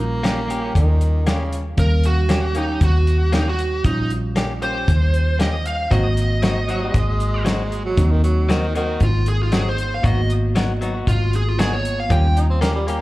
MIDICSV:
0, 0, Header, 1, 7, 480
1, 0, Start_track
1, 0, Tempo, 515907
1, 1659, Time_signature, 4, 2, 24, 8
1, 12107, End_track
2, 0, Start_track
2, 0, Title_t, "Lead electric guitar"
2, 0, Program_c, 0, 29
2, 1668, Note_on_c, 0, 70, 79
2, 1896, Note_off_c, 0, 70, 0
2, 1919, Note_on_c, 0, 66, 78
2, 2375, Note_off_c, 0, 66, 0
2, 2397, Note_on_c, 0, 63, 78
2, 2621, Note_off_c, 0, 63, 0
2, 2644, Note_on_c, 0, 66, 83
2, 3097, Note_off_c, 0, 66, 0
2, 3123, Note_on_c, 0, 63, 87
2, 3230, Note_off_c, 0, 63, 0
2, 3247, Note_on_c, 0, 66, 78
2, 3581, Note_off_c, 0, 66, 0
2, 3587, Note_on_c, 0, 63, 74
2, 3816, Note_off_c, 0, 63, 0
2, 4305, Note_on_c, 0, 72, 87
2, 5000, Note_off_c, 0, 72, 0
2, 5028, Note_on_c, 0, 75, 79
2, 5256, Note_off_c, 0, 75, 0
2, 5275, Note_on_c, 0, 77, 73
2, 5500, Note_off_c, 0, 77, 0
2, 5507, Note_on_c, 0, 75, 81
2, 6906, Note_off_c, 0, 75, 0
2, 8405, Note_on_c, 0, 65, 95
2, 8626, Note_off_c, 0, 65, 0
2, 8642, Note_on_c, 0, 68, 70
2, 8751, Note_off_c, 0, 68, 0
2, 8771, Note_on_c, 0, 65, 80
2, 8872, Note_off_c, 0, 65, 0
2, 8884, Note_on_c, 0, 68, 88
2, 8992, Note_off_c, 0, 68, 0
2, 9016, Note_on_c, 0, 72, 85
2, 9233, Note_off_c, 0, 72, 0
2, 9251, Note_on_c, 0, 77, 89
2, 9352, Note_off_c, 0, 77, 0
2, 9369, Note_on_c, 0, 75, 76
2, 9589, Note_off_c, 0, 75, 0
2, 10311, Note_on_c, 0, 65, 96
2, 10539, Note_off_c, 0, 65, 0
2, 10569, Note_on_c, 0, 68, 76
2, 10687, Note_off_c, 0, 68, 0
2, 10687, Note_on_c, 0, 65, 78
2, 10784, Note_off_c, 0, 65, 0
2, 10784, Note_on_c, 0, 68, 93
2, 10902, Note_off_c, 0, 68, 0
2, 10914, Note_on_c, 0, 73, 77
2, 11143, Note_off_c, 0, 73, 0
2, 11162, Note_on_c, 0, 77, 69
2, 11268, Note_off_c, 0, 77, 0
2, 11272, Note_on_c, 0, 79, 81
2, 11500, Note_off_c, 0, 79, 0
2, 12107, End_track
3, 0, Start_track
3, 0, Title_t, "Clean electric guitar"
3, 0, Program_c, 1, 27
3, 218, Note_on_c, 1, 58, 90
3, 227, Note_on_c, 1, 61, 91
3, 232, Note_on_c, 1, 67, 99
3, 364, Note_off_c, 1, 58, 0
3, 369, Note_off_c, 1, 61, 0
3, 372, Note_off_c, 1, 67, 0
3, 449, Note_on_c, 1, 58, 80
3, 462, Note_on_c, 1, 61, 66
3, 472, Note_on_c, 1, 67, 74
3, 562, Note_off_c, 1, 67, 0
3, 573, Note_on_c, 1, 67, 63
3, 576, Note_off_c, 1, 58, 0
3, 583, Note_off_c, 1, 61, 0
3, 599, Note_on_c, 1, 61, 47
3, 719, Note_off_c, 1, 67, 0
3, 732, Note_off_c, 1, 61, 0
3, 1179, Note_on_c, 1, 58, 83
3, 1186, Note_on_c, 1, 61, 81
3, 1192, Note_on_c, 1, 67, 78
3, 1325, Note_off_c, 1, 58, 0
3, 1328, Note_off_c, 1, 61, 0
3, 1332, Note_off_c, 1, 67, 0
3, 2130, Note_on_c, 1, 58, 73
3, 2138, Note_on_c, 1, 61, 89
3, 2146, Note_on_c, 1, 67, 87
3, 2281, Note_off_c, 1, 58, 0
3, 2284, Note_off_c, 1, 61, 0
3, 2289, Note_off_c, 1, 67, 0
3, 2371, Note_on_c, 1, 58, 64
3, 2382, Note_on_c, 1, 61, 66
3, 2394, Note_on_c, 1, 67, 71
3, 2480, Note_off_c, 1, 67, 0
3, 2491, Note_on_c, 1, 67, 56
3, 2497, Note_off_c, 1, 58, 0
3, 2503, Note_off_c, 1, 61, 0
3, 2514, Note_on_c, 1, 61, 46
3, 2638, Note_off_c, 1, 67, 0
3, 2650, Note_off_c, 1, 61, 0
3, 3093, Note_on_c, 1, 58, 67
3, 3099, Note_on_c, 1, 61, 67
3, 3106, Note_on_c, 1, 67, 77
3, 3242, Note_off_c, 1, 58, 0
3, 3245, Note_off_c, 1, 61, 0
3, 3249, Note_off_c, 1, 67, 0
3, 4055, Note_on_c, 1, 58, 90
3, 4065, Note_on_c, 1, 61, 96
3, 4072, Note_on_c, 1, 67, 94
3, 4203, Note_off_c, 1, 58, 0
3, 4208, Note_off_c, 1, 61, 0
3, 4211, Note_off_c, 1, 67, 0
3, 4296, Note_on_c, 1, 58, 65
3, 4306, Note_on_c, 1, 61, 61
3, 4317, Note_on_c, 1, 67, 62
3, 4404, Note_off_c, 1, 67, 0
3, 4415, Note_on_c, 1, 67, 55
3, 4420, Note_off_c, 1, 58, 0
3, 4425, Note_off_c, 1, 61, 0
3, 4438, Note_on_c, 1, 61, 44
3, 4560, Note_off_c, 1, 67, 0
3, 4571, Note_off_c, 1, 61, 0
3, 5017, Note_on_c, 1, 58, 69
3, 5028, Note_on_c, 1, 61, 76
3, 5033, Note_on_c, 1, 67, 82
3, 5164, Note_off_c, 1, 58, 0
3, 5169, Note_off_c, 1, 61, 0
3, 5172, Note_off_c, 1, 67, 0
3, 5497, Note_on_c, 1, 54, 71
3, 5499, Note_on_c, 1, 60, 87
3, 5507, Note_on_c, 1, 63, 85
3, 5513, Note_on_c, 1, 66, 96
3, 5644, Note_off_c, 1, 54, 0
3, 5645, Note_off_c, 1, 60, 0
3, 5649, Note_off_c, 1, 63, 0
3, 5652, Note_off_c, 1, 66, 0
3, 5977, Note_on_c, 1, 54, 78
3, 5984, Note_on_c, 1, 60, 89
3, 5989, Note_on_c, 1, 63, 92
3, 5992, Note_on_c, 1, 66, 93
3, 6124, Note_off_c, 1, 54, 0
3, 6128, Note_off_c, 1, 60, 0
3, 6130, Note_off_c, 1, 63, 0
3, 6132, Note_off_c, 1, 66, 0
3, 6215, Note_on_c, 1, 54, 65
3, 6225, Note_on_c, 1, 60, 68
3, 6232, Note_on_c, 1, 63, 67
3, 6238, Note_on_c, 1, 66, 80
3, 6318, Note_off_c, 1, 66, 0
3, 6330, Note_on_c, 1, 66, 56
3, 6332, Note_off_c, 1, 63, 0
3, 6340, Note_off_c, 1, 54, 0
3, 6341, Note_off_c, 1, 60, 0
3, 6343, Note_on_c, 1, 63, 53
3, 6353, Note_on_c, 1, 60, 48
3, 6478, Note_off_c, 1, 66, 0
3, 6484, Note_off_c, 1, 63, 0
3, 6489, Note_off_c, 1, 60, 0
3, 6930, Note_on_c, 1, 54, 90
3, 6938, Note_on_c, 1, 60, 81
3, 6943, Note_on_c, 1, 63, 79
3, 6946, Note_on_c, 1, 66, 77
3, 7081, Note_off_c, 1, 54, 0
3, 7085, Note_off_c, 1, 60, 0
3, 7088, Note_off_c, 1, 63, 0
3, 7089, Note_off_c, 1, 66, 0
3, 7897, Note_on_c, 1, 54, 84
3, 7905, Note_on_c, 1, 60, 92
3, 7910, Note_on_c, 1, 63, 92
3, 7915, Note_on_c, 1, 66, 111
3, 8045, Note_off_c, 1, 54, 0
3, 8049, Note_off_c, 1, 60, 0
3, 8051, Note_off_c, 1, 63, 0
3, 8053, Note_off_c, 1, 66, 0
3, 8136, Note_on_c, 1, 54, 59
3, 8143, Note_on_c, 1, 60, 66
3, 8152, Note_on_c, 1, 63, 67
3, 8158, Note_on_c, 1, 66, 84
3, 8251, Note_off_c, 1, 66, 0
3, 8261, Note_off_c, 1, 54, 0
3, 8262, Note_on_c, 1, 66, 50
3, 8264, Note_off_c, 1, 60, 0
3, 8265, Note_off_c, 1, 63, 0
3, 8277, Note_on_c, 1, 63, 51
3, 8286, Note_on_c, 1, 60, 41
3, 8404, Note_off_c, 1, 66, 0
3, 8412, Note_off_c, 1, 63, 0
3, 8417, Note_off_c, 1, 60, 0
3, 8860, Note_on_c, 1, 54, 72
3, 8863, Note_on_c, 1, 60, 76
3, 8873, Note_on_c, 1, 63, 72
3, 8875, Note_on_c, 1, 66, 80
3, 9006, Note_off_c, 1, 54, 0
3, 9008, Note_off_c, 1, 60, 0
3, 9013, Note_off_c, 1, 63, 0
3, 9014, Note_off_c, 1, 66, 0
3, 9335, Note_on_c, 1, 54, 80
3, 9346, Note_on_c, 1, 59, 82
3, 9350, Note_on_c, 1, 63, 94
3, 9353, Note_on_c, 1, 66, 87
3, 9485, Note_off_c, 1, 54, 0
3, 9490, Note_off_c, 1, 59, 0
3, 9492, Note_off_c, 1, 63, 0
3, 9493, Note_off_c, 1, 66, 0
3, 9820, Note_on_c, 1, 54, 87
3, 9827, Note_on_c, 1, 59, 91
3, 9833, Note_on_c, 1, 63, 102
3, 9834, Note_on_c, 1, 66, 96
3, 9967, Note_off_c, 1, 54, 0
3, 9971, Note_off_c, 1, 59, 0
3, 9974, Note_off_c, 1, 63, 0
3, 9974, Note_off_c, 1, 66, 0
3, 10059, Note_on_c, 1, 54, 77
3, 10068, Note_on_c, 1, 59, 68
3, 10075, Note_on_c, 1, 63, 77
3, 10080, Note_on_c, 1, 66, 69
3, 10168, Note_off_c, 1, 66, 0
3, 10179, Note_off_c, 1, 63, 0
3, 10179, Note_on_c, 1, 66, 55
3, 10183, Note_off_c, 1, 54, 0
3, 10188, Note_off_c, 1, 59, 0
3, 10191, Note_on_c, 1, 63, 45
3, 10202, Note_on_c, 1, 59, 49
3, 10324, Note_off_c, 1, 66, 0
3, 10330, Note_off_c, 1, 63, 0
3, 10335, Note_off_c, 1, 59, 0
3, 10780, Note_on_c, 1, 54, 73
3, 10784, Note_on_c, 1, 59, 81
3, 10792, Note_on_c, 1, 63, 92
3, 10795, Note_on_c, 1, 66, 85
3, 10928, Note_off_c, 1, 54, 0
3, 10930, Note_off_c, 1, 59, 0
3, 10934, Note_off_c, 1, 63, 0
3, 10935, Note_off_c, 1, 66, 0
3, 11260, Note_on_c, 1, 58, 76
3, 11268, Note_on_c, 1, 61, 82
3, 11274, Note_on_c, 1, 67, 80
3, 11408, Note_off_c, 1, 58, 0
3, 11412, Note_off_c, 1, 61, 0
3, 11415, Note_off_c, 1, 67, 0
3, 11734, Note_on_c, 1, 58, 97
3, 11743, Note_on_c, 1, 61, 100
3, 11751, Note_on_c, 1, 67, 106
3, 11885, Note_off_c, 1, 58, 0
3, 11889, Note_off_c, 1, 61, 0
3, 11893, Note_off_c, 1, 67, 0
3, 11973, Note_on_c, 1, 58, 59
3, 11986, Note_on_c, 1, 61, 74
3, 11997, Note_on_c, 1, 67, 77
3, 12084, Note_off_c, 1, 67, 0
3, 12101, Note_off_c, 1, 58, 0
3, 12107, Note_off_c, 1, 61, 0
3, 12107, End_track
4, 0, Start_track
4, 0, Title_t, "Tine electric piano"
4, 0, Program_c, 2, 4
4, 0, Note_on_c, 2, 55, 63
4, 0, Note_on_c, 2, 61, 61
4, 0, Note_on_c, 2, 65, 75
4, 1616, Note_off_c, 2, 55, 0
4, 1617, Note_off_c, 2, 61, 0
4, 1622, Note_off_c, 2, 65, 0
4, 1642, Note_on_c, 2, 55, 65
4, 1648, Note_on_c, 2, 61, 58
4, 1654, Note_on_c, 2, 77, 71
4, 3533, Note_off_c, 2, 55, 0
4, 3536, Note_off_c, 2, 61, 0
4, 3539, Note_off_c, 2, 77, 0
4, 3569, Note_on_c, 2, 55, 64
4, 3578, Note_on_c, 2, 61, 61
4, 3582, Note_on_c, 2, 65, 72
4, 5457, Note_off_c, 2, 55, 0
4, 5461, Note_off_c, 2, 61, 0
4, 5463, Note_off_c, 2, 65, 0
4, 5492, Note_on_c, 2, 58, 69
4, 5498, Note_on_c, 2, 60, 56
4, 5506, Note_on_c, 2, 66, 72
4, 7379, Note_off_c, 2, 58, 0
4, 7382, Note_off_c, 2, 60, 0
4, 7386, Note_off_c, 2, 66, 0
4, 7409, Note_on_c, 2, 58, 77
4, 7416, Note_on_c, 2, 60, 72
4, 7421, Note_on_c, 2, 63, 88
4, 9299, Note_off_c, 2, 58, 0
4, 9302, Note_off_c, 2, 60, 0
4, 9305, Note_off_c, 2, 63, 0
4, 9322, Note_on_c, 2, 58, 61
4, 9331, Note_on_c, 2, 59, 60
4, 9341, Note_on_c, 2, 66, 78
4, 10744, Note_off_c, 2, 58, 0
4, 10749, Note_off_c, 2, 59, 0
4, 10753, Note_off_c, 2, 66, 0
4, 10764, Note_on_c, 2, 58, 39
4, 10771, Note_on_c, 2, 65, 54
4, 10773, Note_on_c, 2, 59, 41
4, 11246, Note_off_c, 2, 65, 0
4, 11248, Note_on_c, 2, 55, 66
4, 11254, Note_off_c, 2, 58, 0
4, 11255, Note_on_c, 2, 61, 62
4, 11257, Note_on_c, 2, 65, 76
4, 11258, Note_off_c, 2, 59, 0
4, 12107, Note_off_c, 2, 55, 0
4, 12107, Note_off_c, 2, 61, 0
4, 12107, Note_off_c, 2, 65, 0
4, 12107, End_track
5, 0, Start_track
5, 0, Title_t, "Tenor saxophone"
5, 0, Program_c, 3, 66
5, 0, Note_on_c, 3, 58, 86
5, 680, Note_off_c, 3, 58, 0
5, 702, Note_on_c, 3, 51, 85
5, 1189, Note_on_c, 3, 49, 81
5, 1203, Note_off_c, 3, 51, 0
5, 1536, Note_off_c, 3, 49, 0
5, 6232, Note_on_c, 3, 54, 84
5, 6340, Note_off_c, 3, 54, 0
5, 6351, Note_on_c, 3, 56, 77
5, 7278, Note_off_c, 3, 56, 0
5, 7308, Note_on_c, 3, 54, 86
5, 7548, Note_on_c, 3, 51, 82
5, 7562, Note_off_c, 3, 54, 0
5, 7655, Note_off_c, 3, 51, 0
5, 7662, Note_on_c, 3, 54, 74
5, 7917, Note_on_c, 3, 51, 89
5, 7931, Note_off_c, 3, 54, 0
5, 8142, Note_off_c, 3, 51, 0
5, 8149, Note_on_c, 3, 51, 91
5, 8378, Note_off_c, 3, 51, 0
5, 11506, Note_on_c, 3, 63, 82
5, 11619, Note_off_c, 3, 63, 0
5, 11626, Note_on_c, 3, 60, 77
5, 11736, Note_off_c, 3, 60, 0
5, 11740, Note_on_c, 3, 58, 98
5, 11856, Note_off_c, 3, 58, 0
5, 11866, Note_on_c, 3, 55, 86
5, 11984, Note_on_c, 3, 58, 79
5, 11998, Note_off_c, 3, 55, 0
5, 12107, Note_off_c, 3, 58, 0
5, 12107, End_track
6, 0, Start_track
6, 0, Title_t, "Fingered electric bass"
6, 0, Program_c, 4, 33
6, 0, Note_on_c, 4, 34, 94
6, 663, Note_off_c, 4, 34, 0
6, 699, Note_on_c, 4, 39, 86
6, 1622, Note_off_c, 4, 39, 0
6, 1654, Note_on_c, 4, 39, 102
6, 2579, Note_off_c, 4, 39, 0
6, 2615, Note_on_c, 4, 39, 98
6, 3540, Note_off_c, 4, 39, 0
6, 3577, Note_on_c, 4, 34, 99
6, 4501, Note_off_c, 4, 34, 0
6, 4540, Note_on_c, 4, 39, 88
6, 5462, Note_off_c, 4, 39, 0
6, 5502, Note_on_c, 4, 32, 107
6, 6423, Note_off_c, 4, 32, 0
6, 6460, Note_on_c, 4, 32, 83
6, 7383, Note_off_c, 4, 32, 0
6, 7419, Note_on_c, 4, 39, 95
6, 8343, Note_off_c, 4, 39, 0
6, 8384, Note_on_c, 4, 32, 94
6, 9305, Note_off_c, 4, 32, 0
6, 9340, Note_on_c, 4, 32, 103
6, 10264, Note_off_c, 4, 32, 0
6, 10299, Note_on_c, 4, 32, 85
6, 11224, Note_off_c, 4, 32, 0
6, 11258, Note_on_c, 4, 39, 102
6, 12107, Note_off_c, 4, 39, 0
6, 12107, End_track
7, 0, Start_track
7, 0, Title_t, "Drums"
7, 223, Note_on_c, 9, 42, 82
7, 234, Note_on_c, 9, 38, 101
7, 316, Note_off_c, 9, 42, 0
7, 327, Note_off_c, 9, 38, 0
7, 467, Note_on_c, 9, 42, 61
7, 560, Note_off_c, 9, 42, 0
7, 700, Note_on_c, 9, 36, 81
7, 705, Note_on_c, 9, 42, 82
7, 793, Note_off_c, 9, 36, 0
7, 798, Note_off_c, 9, 42, 0
7, 939, Note_on_c, 9, 42, 60
7, 1032, Note_off_c, 9, 42, 0
7, 1177, Note_on_c, 9, 42, 79
7, 1187, Note_on_c, 9, 38, 122
7, 1270, Note_off_c, 9, 42, 0
7, 1280, Note_off_c, 9, 38, 0
7, 1419, Note_on_c, 9, 42, 60
7, 1512, Note_off_c, 9, 42, 0
7, 1652, Note_on_c, 9, 42, 72
7, 1655, Note_on_c, 9, 36, 100
7, 1745, Note_off_c, 9, 42, 0
7, 1748, Note_off_c, 9, 36, 0
7, 1893, Note_on_c, 9, 42, 68
7, 1986, Note_off_c, 9, 42, 0
7, 2131, Note_on_c, 9, 42, 89
7, 2142, Note_on_c, 9, 38, 108
7, 2224, Note_off_c, 9, 42, 0
7, 2235, Note_off_c, 9, 38, 0
7, 2370, Note_on_c, 9, 42, 61
7, 2463, Note_off_c, 9, 42, 0
7, 2614, Note_on_c, 9, 42, 93
7, 2615, Note_on_c, 9, 36, 90
7, 2707, Note_off_c, 9, 42, 0
7, 2708, Note_off_c, 9, 36, 0
7, 2858, Note_on_c, 9, 42, 72
7, 2951, Note_off_c, 9, 42, 0
7, 3095, Note_on_c, 9, 42, 79
7, 3106, Note_on_c, 9, 38, 109
7, 3188, Note_off_c, 9, 42, 0
7, 3199, Note_off_c, 9, 38, 0
7, 3337, Note_on_c, 9, 42, 71
7, 3430, Note_off_c, 9, 42, 0
7, 3576, Note_on_c, 9, 42, 83
7, 3577, Note_on_c, 9, 36, 95
7, 3669, Note_off_c, 9, 42, 0
7, 3671, Note_off_c, 9, 36, 0
7, 3818, Note_on_c, 9, 42, 59
7, 3911, Note_off_c, 9, 42, 0
7, 4055, Note_on_c, 9, 42, 78
7, 4065, Note_on_c, 9, 38, 101
7, 4148, Note_off_c, 9, 42, 0
7, 4158, Note_off_c, 9, 38, 0
7, 4300, Note_on_c, 9, 42, 60
7, 4393, Note_off_c, 9, 42, 0
7, 4540, Note_on_c, 9, 36, 87
7, 4540, Note_on_c, 9, 42, 85
7, 4633, Note_off_c, 9, 36, 0
7, 4633, Note_off_c, 9, 42, 0
7, 4780, Note_on_c, 9, 42, 58
7, 4874, Note_off_c, 9, 42, 0
7, 5020, Note_on_c, 9, 42, 82
7, 5031, Note_on_c, 9, 38, 114
7, 5113, Note_off_c, 9, 42, 0
7, 5124, Note_off_c, 9, 38, 0
7, 5261, Note_on_c, 9, 42, 59
7, 5354, Note_off_c, 9, 42, 0
7, 5501, Note_on_c, 9, 42, 75
7, 5502, Note_on_c, 9, 36, 93
7, 5594, Note_off_c, 9, 42, 0
7, 5595, Note_off_c, 9, 36, 0
7, 5741, Note_on_c, 9, 42, 65
7, 5834, Note_off_c, 9, 42, 0
7, 5979, Note_on_c, 9, 42, 84
7, 5989, Note_on_c, 9, 38, 105
7, 6072, Note_off_c, 9, 42, 0
7, 6082, Note_off_c, 9, 38, 0
7, 6221, Note_on_c, 9, 42, 63
7, 6314, Note_off_c, 9, 42, 0
7, 6458, Note_on_c, 9, 42, 82
7, 6459, Note_on_c, 9, 36, 87
7, 6551, Note_off_c, 9, 42, 0
7, 6553, Note_off_c, 9, 36, 0
7, 6700, Note_on_c, 9, 42, 62
7, 6793, Note_off_c, 9, 42, 0
7, 6938, Note_on_c, 9, 42, 88
7, 6949, Note_on_c, 9, 38, 109
7, 7031, Note_off_c, 9, 42, 0
7, 7042, Note_off_c, 9, 38, 0
7, 7183, Note_on_c, 9, 42, 70
7, 7276, Note_off_c, 9, 42, 0
7, 7418, Note_on_c, 9, 42, 83
7, 7420, Note_on_c, 9, 36, 98
7, 7511, Note_off_c, 9, 42, 0
7, 7513, Note_off_c, 9, 36, 0
7, 7666, Note_on_c, 9, 42, 62
7, 7759, Note_off_c, 9, 42, 0
7, 7904, Note_on_c, 9, 42, 77
7, 7914, Note_on_c, 9, 38, 109
7, 7997, Note_off_c, 9, 42, 0
7, 8007, Note_off_c, 9, 38, 0
7, 8145, Note_on_c, 9, 42, 64
7, 8238, Note_off_c, 9, 42, 0
7, 8376, Note_on_c, 9, 42, 78
7, 8380, Note_on_c, 9, 36, 87
7, 8469, Note_off_c, 9, 42, 0
7, 8473, Note_off_c, 9, 36, 0
7, 8617, Note_on_c, 9, 42, 59
7, 8710, Note_off_c, 9, 42, 0
7, 8856, Note_on_c, 9, 42, 81
7, 8867, Note_on_c, 9, 38, 115
7, 8950, Note_off_c, 9, 42, 0
7, 8960, Note_off_c, 9, 38, 0
7, 9102, Note_on_c, 9, 42, 59
7, 9195, Note_off_c, 9, 42, 0
7, 9341, Note_on_c, 9, 36, 96
7, 9344, Note_on_c, 9, 42, 74
7, 9434, Note_off_c, 9, 36, 0
7, 9437, Note_off_c, 9, 42, 0
7, 9582, Note_on_c, 9, 42, 56
7, 9675, Note_off_c, 9, 42, 0
7, 9822, Note_on_c, 9, 42, 81
7, 9832, Note_on_c, 9, 38, 111
7, 9915, Note_off_c, 9, 42, 0
7, 9925, Note_off_c, 9, 38, 0
7, 10064, Note_on_c, 9, 42, 54
7, 10157, Note_off_c, 9, 42, 0
7, 10301, Note_on_c, 9, 36, 88
7, 10305, Note_on_c, 9, 42, 79
7, 10394, Note_off_c, 9, 36, 0
7, 10398, Note_off_c, 9, 42, 0
7, 10544, Note_on_c, 9, 42, 66
7, 10637, Note_off_c, 9, 42, 0
7, 10786, Note_on_c, 9, 42, 88
7, 10796, Note_on_c, 9, 38, 118
7, 10879, Note_off_c, 9, 42, 0
7, 10889, Note_off_c, 9, 38, 0
7, 11026, Note_on_c, 9, 42, 64
7, 11119, Note_off_c, 9, 42, 0
7, 11260, Note_on_c, 9, 36, 109
7, 11261, Note_on_c, 9, 42, 73
7, 11353, Note_off_c, 9, 36, 0
7, 11354, Note_off_c, 9, 42, 0
7, 11507, Note_on_c, 9, 42, 68
7, 11600, Note_off_c, 9, 42, 0
7, 11742, Note_on_c, 9, 42, 86
7, 11752, Note_on_c, 9, 38, 117
7, 11835, Note_off_c, 9, 42, 0
7, 11845, Note_off_c, 9, 38, 0
7, 11983, Note_on_c, 9, 42, 68
7, 12076, Note_off_c, 9, 42, 0
7, 12107, End_track
0, 0, End_of_file